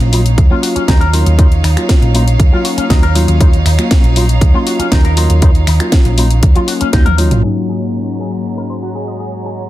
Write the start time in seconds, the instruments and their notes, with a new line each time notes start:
Already playing: violin section D#4 C#5 F5
0.00 picked electric bass A#1, closed hi-hat
0.12 tine electric piano F#3 A#3 C#4 F4, clean electric guitar D#4, open hi-hat
0.26 closed hi-hat
0.38 picked electric bass D#2, kick, closed hi-hat
0.50 tine electric piano F#3 A#3 C#4 F4, clean electric guitar F4
0.63 clean electric guitar F#4, open hi-hat
0.76 clean electric guitar C#4, muted picked electric bass stroke, closed hi-hat
0.88 picked electric bass D#2, tine electric piano F#3 A#3 C#4 D#4, clean electric guitar D#4, kick, snare, closed hi-hat
1.01 clean electric guitar A#4, closed hi-hat
1.13 tine electric piano F#3 A#3 C#4 F4, clean electric guitar D#4, open hi-hat
1.26 picked electric bass D#2, closed hi-hat
1.38 tine electric piano F#3 A#3 C#4 F4, clean electric guitar D#4, kick, closed hi-hat
1.52 closed hi-hat
1.64 picked electric bass D#2, clean electric guitar D#4, finger snap, open hi-hat
1.76 tine electric piano F#3 A#3 C#4 F4, finger snap, closed hi-hat
1.89 kick, snare, closed hi-hat
2.02 picked electric bass A#1, closed hi-hat
2.14 tine electric piano F#3 A#3 C#4 F4, clean electric guitar D#4, open hi-hat
2.28 closed hi-hat
2.39 picked electric bass D#2, kick, closed hi-hat
2.52 tine electric piano F#3 A#3 C#4 F4, clean electric guitar F4
2.65 clean electric guitar F#4, open hi-hat
2.77 clean electric guitar C#4, muted picked electric bass stroke, closed hi-hat
2.90 picked electric bass D#2, tine electric piano F#3 A#3 C#4 D#4, clean electric guitar D#4, kick, snare, closed hi-hat
3.03 clean electric guitar A#4, closed hi-hat
3.15 tine electric piano F#3 A#3 C#4 F4, clean electric guitar D#4, open hi-hat
3.28 picked electric bass D#2, closed hi-hat
3.40 tine electric piano F#3 A#3 C#4 F4, clean electric guitar D#4, kick, closed hi-hat
3.53 closed hi-hat
3.65 picked electric bass D#2, clean electric guitar D#4, finger snap, open hi-hat
3.78 tine electric piano F#3 A#3 C#4 F4, finger snap, closed hi-hat
3.91 kick, snare, closed hi-hat
4.03 picked electric bass A#1, closed hi-hat
4.16 tine electric piano F#3 A#3 C#4 F4, clean electric guitar D#4, open hi-hat
4.29 closed hi-hat
4.41 picked electric bass D#2, kick, closed hi-hat
4.54 tine electric piano F#3 A#3 C#4 F4, clean electric guitar F4
4.67 clean electric guitar F#4, open hi-hat
4.79 clean electric guitar C#4, muted picked electric bass stroke, closed hi-hat
4.91 picked electric bass D#2, tine electric piano F#3 A#3 C#4 D#4, clean electric guitar D#4, kick, snare, closed hi-hat
5.05 clean electric guitar A#4, closed hi-hat
5.17 tine electric piano F#3 A#3 C#4 F4, clean electric guitar D#4, open hi-hat
5.30 picked electric bass D#2, closed hi-hat
5.42 tine electric piano F#3 A#3 C#4 F4, clean electric guitar D#4, kick, closed hi-hat
5.55 closed hi-hat
5.67 picked electric bass D#2, clean electric guitar D#4, finger snap, open hi-hat
5.80 tine electric piano F#3 A#3 C#4 F4, finger snap, closed hi-hat
5.92 kick, snare, closed hi-hat
6.05 picked electric bass A#1, closed hi-hat
6.17 tine electric piano F#3 A#3 C#4 F4, clean electric guitar D#4, open hi-hat
6.30 closed hi-hat
6.43 picked electric bass D#2, kick, closed hi-hat
6.55 tine electric piano F#3 A#3 C#4 F4, clean electric guitar F4, closed hi-hat
6.68 clean electric guitar F#4, open hi-hat
6.81 clean electric guitar C#4, muted picked electric bass stroke, closed hi-hat
6.93 picked electric bass D#2, tine electric piano F#3 A#3 C#4 D#4, clean electric guitar D#4, kick, snare, closed hi-hat
7.06 clean electric guitar A#4, closed hi-hat, high tom
7.18 tine electric piano F#3 A#3 C#4 F4, clean electric guitar D#4, open hi-hat
7.31 picked electric bass A#1, closed hi-hat, mid tom
7.43 tine electric piano G#2 F#3 A#3 C#4 D#4, violin section G#3 F#4 C#5 A#5, clean electric guitar G#4
7.69 clean electric guitar G#4
8.19 clean electric guitar G#4
8.57 clean electric guitar A#4
8.70 clean electric guitar C5
8.82 clean electric guitar F#4
8.95 clean electric guitar G#4
9.08 clean electric guitar D#5
9.20 clean electric guitar G#4
9.45 clean electric guitar G#4